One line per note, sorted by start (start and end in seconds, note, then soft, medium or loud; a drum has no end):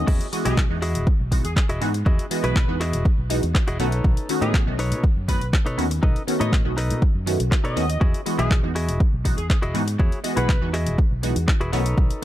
0.07 0.18 E2 loud
0.07 0.26 E4 loud
0.07 0.26 F#4 loud
0.07 0.27 G#4 loud
0.07 0.27 D#5 loud
0.07 kick loud
0.07 crash medium
0.21 closed hi-hat medium
0.32 0.67 E3 medium
0.32 0.67 G#3 medium
0.32 0.67 B3 medium
0.32 0.67 F#4 medium
0.32 0.67 D#5 medium
0.32 open hi-hat loud
0.45 0.66 B1 medium
0.45 0.57 E4 medium
0.45 0.57 F#4 medium
0.45 0.58 G#4 medium
0.45 0.63 G#4 medium
0.45 0.58 D#5 medium
0.45 closed hi-hat medium
0.57 kick loud
0.57 clap loud
0.70 0.97 E2 loud
0.70 0.77 E3 medium
0.70 0.78 G#3 medium
0.70 0.78 B3 medium
0.70 0.78 D#4 medium
0.70 0.78 F#4 medium
0.70 muted clean electric guitar stroke soft
0.82 1.07 E4 medium
0.82 1.07 F#4 medium
0.82 1.07 G#4 medium
0.82 1.07 D#5 medium
0.82 open hi-hat medium
0.95 1.05 E1 medium
0.95 closed hi-hat medium
1.07 muted fingered electric bass stroke soft
1.07 kick loud
1.20 1.41 B1 medium
1.32 1.44 E3 medium
1.32 1.44 G#3 medium
1.32 1.45 B3 medium
1.32 1.45 D#4 medium
1.32 1.45 F#4 medium
1.32 muted clean electric guitar stroke soft
1.32 kick medium
1.32 open hi-hat loud
1.44 1.55 E2 loud
1.44 1.52 G#4 medium
1.44 closed hi-hat medium
1.56 1.65 G#4 medium
1.56 muted clean electric guitar stroke medium
1.56 kick loud
1.56 clap loud
1.69 1.79 E1 medium
1.69 1.81 E4 loud
1.69 1.81 F#4 loud
1.69 1.82 G#4 loud
1.69 1.82 D#5 loud
1.69 closed hi-hat medium
1.81 2.02 G#2 loud
1.81 1.89 E3 medium
1.81 1.89 G#3 medium
1.81 1.89 B3 medium
1.81 1.89 D#4 medium
1.81 1.90 F#4 loud
1.81 open hi-hat medium
1.94 muted clean electric guitar stroke soft
1.94 closed hi-hat medium
2.06 2.17 E2 loud
2.06 2.25 E4 loud
2.06 2.25 F#4 loud
2.06 2.25 G#4 loud
2.06 2.25 D#5 loud
2.06 kick loud
2.19 closed hi-hat medium
2.31 2.65 E3 medium
2.31 2.65 G#3 medium
2.31 2.65 B3 medium
2.31 2.66 F#4 medium
2.31 2.66 D#5 medium
2.31 open hi-hat loud
2.43 2.64 B1 loud
2.43 2.56 E4 medium
2.43 2.56 F#4 medium
2.43 2.56 G#4 medium
2.43 2.80 B4 medium
2.43 2.56 B4 medium
2.43 closed hi-hat medium
2.56 kick loud
2.56 clap loud
2.68 2.95 E2 loud
2.68 2.76 E3 medium
2.68 2.76 G#3 medium
2.68 2.76 B3 medium
2.68 2.76 D#4 medium
2.68 2.76 F#4 loud
2.68 muted clean electric guitar stroke soft
2.80 3.05 E4 medium
2.80 3.05 F#4 medium
2.80 3.05 G#4 medium
2.80 3.06 D#5 medium
2.80 clap soft
2.80 open hi-hat loud
2.93 3.03 E1 medium
2.93 closed hi-hat medium
3.05 kick loud
3.18 3.39 B1 medium
3.30 3.42 E3 medium
3.30 3.43 G#3 medium
3.30 3.43 B3 medium
3.30 3.43 D#4 medium
3.30 3.43 F#4 medium
3.30 muted clean electric guitar stroke soft
3.30 open hi-hat loud
3.43 3.53 E2 loud
3.43 closed hi-hat medium
3.55 muted clean electric guitar stroke medium
3.55 kick loud
3.55 clap loud
3.67 3.78 E1 medium
3.67 3.80 E4 loud
3.67 3.79 F#4 loud
3.67 3.80 G#4 loud
3.67 3.80 D#5 loud
3.67 closed hi-hat medium
3.79 4.01 B1 loud
3.79 3.87 D#3 medium
3.79 3.88 A3 medium
3.79 3.88 B3 medium
3.79 3.88 C#4 medium
3.79 4.29 D#4 loud
3.79 3.88 F#4 loud
3.79 4.29 A4 medium
3.79 4.30 B4 loud
3.79 4.30 C#5 loud
3.79 open hi-hat loud
3.92 closed hi-hat medium
4.04 4.15 B1 loud
4.04 kick loud
4.17 closed hi-hat medium
4.29 4.64 D#3 medium
4.29 4.64 A3 medium
4.29 4.64 B3 medium
4.29 4.64 C#4 medium
4.29 4.64 F#4 medium
4.29 open hi-hat loud
4.41 4.62 A2 loud
4.41 4.54 D#4 loud
4.41 4.60 G#4 loud
4.41 4.54 A4 medium
4.41 4.54 B4 medium
4.41 4.54 D#5 medium
4.41 closed hi-hat medium
4.54 kick loud
4.54 clap loud
4.66 4.93 B1 loud
4.66 4.74 D#3 medium
4.66 4.74 A3 medium
4.66 4.74 B3 medium
4.66 4.74 C#4 medium
4.66 4.75 F#4 loud
4.66 muted clean electric guitar stroke soft
4.79 5.04 D#4 medium
4.79 5.04 A4 medium
4.79 5.04 B4 medium
4.79 5.04 C#5 medium
4.79 open hi-hat loud
4.91 5.02 B2 medium
4.91 closed hi-hat medium
5.04 muted fingered electric bass stroke soft
5.04 kick loud
5.16 5.37 F#2 medium
5.28 5.41 D#3 medium
5.28 5.41 A3 medium
5.28 5.41 B3 medium
5.28 5.41 C#4 medium
5.28 5.41 F#4 medium
5.28 5.47 B4 loud
5.28 muted clean electric guitar stroke soft
5.28 kick medium
5.28 open hi-hat loud
5.41 5.51 B1 loud
5.41 closed hi-hat medium
5.53 muted clean electric guitar stroke medium
5.53 kick loud
5.53 clap loud
5.66 5.76 B2 medium
5.66 5.78 D#4 loud
5.66 5.78 A4 loud
5.66 5.78 B4 loud
5.66 5.78 C#5 loud
5.66 closed hi-hat soft
5.77 5.99 D#2 loud
5.77 5.86 D#3 medium
5.77 5.86 A3 medium
5.77 5.86 B3 medium
5.77 5.86 C#4 medium
5.77 5.86 F#4 loud
5.77 open hi-hat loud
5.91 muted clean electric guitar stroke soft
5.91 closed hi-hat medium
6.03 6.14 B1 loud
6.03 6.22 D#4 loud
6.03 6.22 A4 loud
6.03 6.22 B4 loud
6.03 6.22 D#5 loud
6.03 kick loud
6.16 closed hi-hat medium
6.27 6.62 D#3 medium
6.27 6.62 A3 medium
6.27 6.62 B3 medium
6.27 6.62 C#4 medium
6.27 6.62 F#4 medium
6.27 open hi-hat loud
6.40 6.61 A2 medium
6.40 6.52 D#4 medium
6.40 6.52 A4 medium
6.40 6.53 B4 medium
6.40 6.53 C#5 loud
6.40 6.58 D#5 medium
6.40 closed hi-hat medium
6.53 kick loud
6.53 clap loud
6.65 6.92 B1 loud
6.65 6.72 D#3 medium
6.65 6.72 A3 medium
6.65 6.72 B3 medium
6.65 6.73 C#4 medium
6.65 6.73 F#4 loud
6.65 muted clean electric guitar stroke soft
6.77 7.02 D#4 medium
6.77 7.02 A4 medium
6.77 7.02 B4 medium
6.77 7.02 D#5 medium
6.77 clap soft
6.77 open hi-hat loud
6.90 7.00 B2 medium
6.90 closed hi-hat medium
7.02 kick loud
7.15 7.36 F#2 medium
7.26 7.39 D#3 medium
7.26 7.39 A3 medium
7.26 7.39 B3 medium
7.26 7.39 C#4 medium
7.26 7.40 F#4 medium
7.26 muted clean electric guitar stroke soft
7.26 open hi-hat loud
7.40 7.50 B1 loud
7.40 closed hi-hat medium
7.51 muted clean electric guitar stroke loud
7.51 kick loud
7.51 clap loud
7.64 7.75 B2 medium
7.64 7.76 D#4 loud
7.64 7.76 A4 loud
7.64 7.77 B4 loud
7.64 7.77 C#5 loud
7.64 8.01 D#5 medium
7.64 closed hi-hat soft
7.76 7.97 D#2 loud
7.76 7.84 D#3 medium
7.76 7.84 A3 medium
7.76 7.84 B3 medium
7.76 7.84 C#4 medium
7.76 7.84 F#4 loud
7.76 open hi-hat loud
7.89 muted clean electric guitar stroke soft
7.89 closed hi-hat medium
8.01 8.20 E4 loud
8.01 8.20 F#4 loud
8.01 8.20 G#4 loud
8.01 8.20 D#5 loud
8.01 kick loud
8.14 closed hi-hat medium
8.26 8.60 E3 medium
8.26 8.60 G#3 medium
8.26 8.60 B3 medium
8.26 8.61 F#4 medium
8.26 8.61 D#5 medium
8.26 open hi-hat loud
8.38 8.59 B1 medium
8.38 8.51 E4 medium
8.38 8.51 F#4 medium
8.38 8.56 G#4 loud
8.38 8.51 G#4 medium
8.38 8.51 E5 loud
8.38 closed hi-hat medium
8.51 kick loud
8.51 clap loud
8.63 8.90 E2 loud
8.63 8.71 E3 medium
8.63 8.71 G#3 medium
8.63 8.71 B3 medium
8.63 8.71 D#4 medium
8.63 8.71 F#4 loud
8.63 muted clean electric guitar stroke soft
8.75 9.00 E4 medium
8.75 9.00 F#4 medium
8.75 9.01 G#4 medium
8.75 9.01 D#5 medium
8.75 open hi-hat loud
8.88 8.98 E1 medium
8.88 closed hi-hat medium
9.00 muted fingered electric bass stroke soft
9.00 kick loud
9.13 9.34 B1 medium
9.24 9.37 E3 medium
9.24 9.37 G#3 medium
9.24 9.38 B3 medium
9.24 9.38 D#4 medium
9.24 9.38 F#4 medium
9.24 muted clean electric guitar stroke soft
9.24 kick medium
9.24 open hi-hat loud
9.38 9.48 E2 loud
9.38 9.45 G#4 medium
9.38 closed hi-hat medium
9.50 9.58 G#4 medium
9.50 muted clean electric guitar stroke medium
9.50 kick loud
9.50 clap loud
9.62 9.73 E1 medium
9.62 9.75 E4 loud
9.62 9.75 F#4 loud
9.62 9.75 G#4 loud
9.62 9.75 D#5 loud
9.62 closed hi-hat soft
9.74 9.95 G#2 loud
9.74 9.82 E3 medium
9.74 9.82 G#3 medium
9.74 9.83 B3 medium
9.74 9.83 D#4 medium
9.74 9.83 F#4 loud
9.74 open hi-hat medium
9.87 muted clean electric guitar stroke soft
9.87 closed hi-hat medium
9.99 10.10 E2 loud
9.99 10.18 E4 loud
9.99 10.18 F#4 loud
9.99 10.18 G#4 loud
9.99 10.19 C#5 loud
9.99 kick loud
10.12 closed hi-hat medium
10.24 10.58 E3 medium
10.24 10.58 G#3 medium
10.24 10.59 B3 medium
10.24 10.59 F#4 medium
10.24 10.59 D#5 medium
10.24 open hi-hat loud
10.36 10.58 B1 medium
10.36 10.49 E4 medium
10.36 10.49 F#4 medium
10.36 10.49 G#4 medium
10.36 10.74 B4 medium
10.36 10.49 F#5 medium
10.36 closed hi-hat medium
10.49 kick loud
10.49 clap loud
10.61 10.88 E2 loud
10.61 10.69 E3 medium
10.61 10.69 G#3 medium
10.61 10.69 B3 medium
10.61 10.69 D#4 medium
10.61 10.69 F#4 loud
10.61 muted clean electric guitar stroke soft
10.73 10.98 E4 medium
10.73 10.99 F#4 medium
10.73 10.99 G#4 medium
10.73 10.99 D#5 loud
10.73 clap soft
10.73 open hi-hat medium
10.86 10.97 E1 medium
10.86 closed hi-hat medium
10.98 kick loud
11.11 11.32 B1 medium
11.23 11.36 E3 medium
11.23 11.36 G#3 medium
11.23 11.36 B3 medium
11.23 11.36 D#4 medium
11.23 11.36 F#4 medium
11.23 muted clean electric guitar stroke soft
11.23 open hi-hat loud
11.36 11.46 E2 loud
11.36 closed hi-hat medium
11.48 muted clean electric guitar stroke loud
11.48 kick loud
11.48 clap loud
11.61 11.71 E1 medium
11.61 11.73 E4 loud
11.61 11.72 F#4 loud
11.61 11.73 G#4 loud
11.61 11.72 B4 loud
11.61 closed hi-hat medium
11.72 11.94 B1 loud
11.72 11.81 D#3 medium
11.72 11.81 A3 medium
11.72 11.81 B3 medium
11.72 11.81 C#4 medium
11.72 12.22 D#4 loud
11.72 11.81 F#4 loud
11.72 12.23 A4 medium
11.72 12.23 B4 loud
11.72 12.23 C#5 medium
11.72 open hi-hat medium
11.86 closed hi-hat medium
11.98 kick loud
12.11 closed hi-hat medium